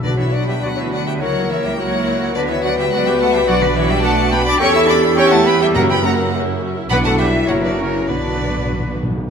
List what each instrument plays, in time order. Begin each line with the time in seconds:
0.03 double bass section B1, timpani B2, cello section D3, viola section B3 F#4, trumpet section D4, clarinet D4, french horn section F#4, oboe B4, flute B4, violin section B4 D5
0.17 cello section E3, trumpet section E4, violin section C#5 E5, flute C#5
0.32 cello section F#3, trumpet section F#4, flute D5, violin section D5 F#5
0.47 cello section G3, trumpet section G4, flute E5, violin section E5 G5
0.62 double bass section D2, cello section F#3, viola section B3 F#4, french horn section D4, trumpet section F#4, violin section D5 F#5, flute D5
0.76 cello section E3, trumpet section E4, violin section C#5 E5, flute C#5
0.91 cello section F#3, trumpet section F#4, violin section D5 F#5, flute D5
1.06 cello section G3, trumpet section G4, violin section E5 G5, flute E5
1.19 double bass section C#2, cello section F#3, viola section A#3 E4, clarinet E4, trumpet section F#4, oboe A#4, french horn section A#4, violin section C#5 F#5, flute C#5
1.49 cello section E3, trumpet section E4, violin section C#5 E5, flute C#5
1.62 cello section G3, trumpet section G4, violin section E5 G5, flute E5
1.77 cello section F#3, viola section A#3 E4, french horn section F#4, trumpet section F#4, violin section C#5 F#5, flute C#5
2.08 french horn section A#4
2.33 double bass section D2, cello section D3, viola section B3 F#4, trumpet section D4, clarinet F#4, violin section B4 D5, french horn section B4, oboe B4, flute B4
2.47 cello section E3, trumpet section E4, violin section C#5 E5
2.52 flute C#5
2.62 cello section F#3, trumpet section F#4, violin section D5 F#5, flute D5
2.76 cello section G3, trumpet section G4, violin section E5 G5
2.80 flute E5
2.91 double bass section C#2, cello section F#3, viola section B3 F#4, trumpet section F#4, violin section D5 F#5, flute D5
3.05 cello section G3, trumpet section G4, violin section E5 G5, flute E5
3.19 cello section A3, trumpet section A4, violin section F#5 A5, flute F#5
3.32 cello section G3, trumpet section G4, violin section E5 G5, flute E5
3.46 double bass section B1, cello section F#3, viola section D4 F#4, trumpet section F#4, violin section D5 F#5, oboe D5, flute D5
3.60 cello section D3, trumpet section D4, violin section B4 D5, flute B4
3.75 cello section E3, trumpet section E4, violin section C#5 E5, flute C#5
3.89 cello section G3, trumpet section G4, violin section E5 G5, flute E5
4.02 cello section A3, french horn section F#4, trumpet section A4, flute F#5, violin section F#5 A5
4.30 cello section B3, trumpet section B4, violin section G5 B5, flute G5
4.44 cello section D4, trumpet section D5, flute B5, violin section B5 D6
4.58 double bass section E2, cello section C#4, viola section C#4 G4, clarinet G4, french horn section A4, trumpet section C#5, oboe E5, flute G5, violin section G5 C#6
4.73 cello section E4, viola section E4, trumpet section E5, flute C#6, violin section C#6 E6
4.87 viola section C#4 G4, cello section D4, trumpet section D5, flute B5, violin section B5 D6
5.03 viola section E4
5.16 cello section C#4, viola section C#4 G4, french horn section G4, trumpet section C#5, flute G5, violin section G5 C#6
5.30 cello section A3, viola section E4, trumpet section A4, flute F#5, violin section F#5 A5
5.46 cello section B3, viola section C#4 G4, trumpet section B4, flute G5, violin section G5 B5
5.60 cello section G3, viola section E4, trumpet section G4, flute E5, violin section E5 G5
5.75 timpani F#2, double bass section F#2, cello section A#3, viola section C#4 F#4, clarinet F#4, french horn section F#4, trumpet section A#4, violin section F#5 A#5, flute F#5
5.89 cello section B3, viola section E4 A#4, trumpet section B4, flute G5, violin section G5 B5
6.03 cello section A#3, viola section C#4 F#4, trumpet section A#4, violin section F#5 A#5, flute F#5
6.18 viola section E4 A#4
6.32 viola section C#4 F#4, french horn section A#4
6.45 viola section E4 A#4
6.60 viola section C#4 F#4, french horn section F#4
6.75 viola section E4 A#4
6.90 double bass section B1, timpani B2, cello section B3, viola section D4 F#4, french horn section E4, clarinet F#4, trumpet section B4, oboe D5, flute F#5, violin section F#5 B5
7.04 cello section A3, trumpet section A4, violin section F#5 A5, flute F#5
7.18 cello section G3, trumpet section G4, oboe B4, flute E5, violin section E5 G5
7.46 double bass section F#1, cello section F#3, viola section A#3 F#4, trumpet section F#4, clarinet F#4, oboe A#4, flute C#5, violin section C#5 F#5
7.62 cello section D3, trumpet section D4, flute B4, violin section B4 D5
7.76 cello section C#3, trumpet section C#4, flute A#4, violin section C#5
7.81 violin section A#4
8.07 double bass section B1, timpani B2, cello section D3, viola section B3 F#4, trumpet section D4, clarinet F#4, flute B4, oboe B4, violin section B4 D5
8.11 french horn section D4
8.18 timpani B2
8.25 timpani B2
8.33 timpani B2
8.42 timpani B2
8.48 timpani B2
8.57 timpani B2
8.65 timpani B2
8.72 timpani B2
8.80 timpani B2
8.87 timpani B2
8.95 timpani B2
9.03 timpani B2
9.10 timpani B2
9.18 timpani B2